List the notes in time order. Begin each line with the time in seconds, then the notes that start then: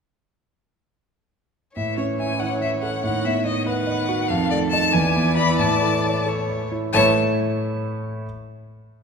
1.76 A2 E3 C#5 E5
1.97 C#4 C#5
2.19 E5 G#5
2.39 C#5 F#5
2.61 E5
2.82 A4 F#5
3.03 A2 D#3 F#5
3.25 B3 E5
3.45 D#5
3.66 B4 F#5
3.87 D#5
4.09 F#4
4.28 F2 A4 F5
4.50 A3 D5
4.71 D#4 D#5 A5
4.92 E2 E3 D5 G#5
5.16 B3
5.37 E4 D5 B5
5.59 A2 A5
5.82 A3
6.05 C#5
6.26 A4 C#5
6.49 C#5
6.72 E4
6.93 A2 E3 A3 E4 C#5 E5 A5